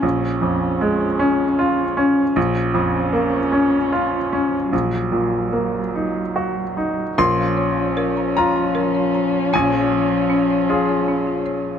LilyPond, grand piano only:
\new Staff \with { instrumentName = "Grand piano" } { \time 6/8 \key bes \minor \tempo 4. = 51 << { r2. | r2. | r2. | c'''4. bes''4. |
aes''2~ aes''8 r8 | } \\ { bes,,8 f,8 aes8 des'8 f'8 des'8 | bes,,8 f,8 bes8 des'8 f'8 des'8 | bes,,8 bes,8 bes8 ees'8 ges'8 ees'8 | bes,,4. f'4. |
bes,,4. <f' aes'>4. | } >> }